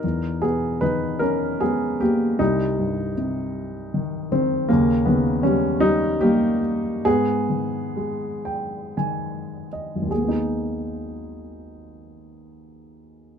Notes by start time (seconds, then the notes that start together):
Already playing: D#4 A#4
0.04 E2
0.42 B2 B3 G#4
0.81 D#3 D#4 B4
1.19 C#4 A#4
1.61 G#3 B3 G#4
2.00 A#3 G4
2.39 C2 G3 D#4
2.79 G2
3.17 C3
3.94 D#3
4.32 D#3 C4
4.69 D#2 C#3 A#3
5.05 C#3 D#3 B3
5.43 D#3 G3 C#4
5.80 G3 D#4
6.21 G3 A#3 G4
7.05 G#2 B3 G#4
7.49 D#3
7.97 G#3
8.45 G5
8.97 D#3 G#5
9.73 D#5
9.95 G#1
10.02 D#2
10.08 G#3 G#4
10.15 A#3
10.22 B3
10.28 D#4